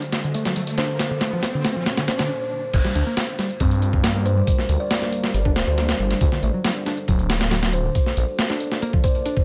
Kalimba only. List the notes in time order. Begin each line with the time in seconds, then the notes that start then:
0.78 C5
2.08 C5
4.26 C5
4.80 D5
4.91 D5
5.56 C5
5.67 C5
7.73 C5
9.04 C5